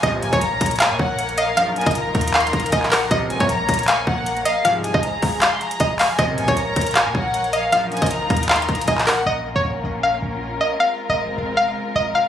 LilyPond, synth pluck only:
\new Staff \with { instrumentName = "Synth pluck" } { \time 4/4 \key bes \minor \tempo 4 = 156 ees''8. des''4~ des''16 f''4. ees''8 | f''8. ees''4~ ees''16 f''4 ees''8 bes'8 | ees''8. des''4~ des''16 f''4. ees''8 | f''8. ees''4~ ees''16 f''4 ees''8 f''8 |
ees''8. des''4~ des''16 f''4. ees''8 | f''8. ees''4~ ees''16 f''4 ees''8 bes'8 | ees''8. des''4~ des''16 f''4. ees''8 | f''8. ees''4~ ees''16 f''4 ees''8 f''8 | }